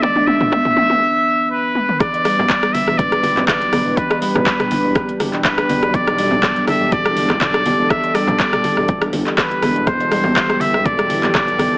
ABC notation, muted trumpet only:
X:1
M:4/4
L:1/8
Q:"Swing 16ths" 1/4=122
K:Em
V:1 name="Muted trumpet"
d e4- e B2 | d3 e d2 d2 | B B4 z B2 | d3 e d2 d2 |
e d4 z B2 | c3 e d2 d2 |]